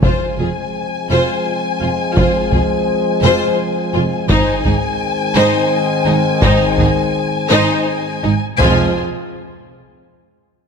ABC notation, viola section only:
X:1
M:6/8
L:1/8
Q:3/8=56
K:Fm
V:1 name="Viola section"
F F z F z F | F F z F z F | E E z E z E | E E z E z E |
F z4 z |]